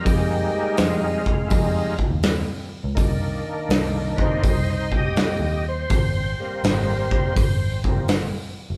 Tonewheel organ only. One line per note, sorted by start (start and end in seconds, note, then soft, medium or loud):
0.01 1.20 G3 medium
0.01 0.77 G#3 soft
0.01 0.27 A#3 medium
0.01 1.21 D#4 medium
0.05 0.29 G4 medium
0.30 0.51 A#3 medium
0.30 0.52 G4 medium
0.52 0.76 A#3 medium
0.52 0.77 G4 medium
0.78 1.01 G#3 medium
0.78 1.02 F4 medium
1.04 1.26 G#3 medium
1.04 1.27 F4 medium
1.27 1.48 G#3 medium
1.27 1.51 F4 medium
1.47 1.94 G3 medium
1.47 1.94 G#3 soft
1.47 1.95 D#4 medium
1.47 1.53 E4 medium
1.52 1.98 F4 medium
2.95 4.18 D#3 medium
2.95 4.19 A#3 medium
2.95 4.19 D4 medium
4.16 4.41 D#3 medium
4.16 4.42 A#3 soft
4.16 4.42 D4 medium
4.16 4.42 D#4 medium
4.16 4.22 B4 medium
4.21 4.44 C5 loud
4.48 4.69 D#4 medium
4.48 4.70 C5 medium
4.70 4.92 D#4 medium
4.70 4.93 C5 medium
4.95 5.17 G4 medium
4.95 5.18 D#5 medium
5.20 5.41 G4 medium
5.20 5.41 D#5 medium
5.42 5.64 G4 medium
5.42 5.65 D#5 medium
5.68 7.82 C5 medium
6.40 7.33 G3 medium
6.40 7.33 A#3 medium
6.40 7.34 C4 medium
7.87 8.09 G3 soft
7.87 8.08 A#3 soft
7.87 8.08 C4 medium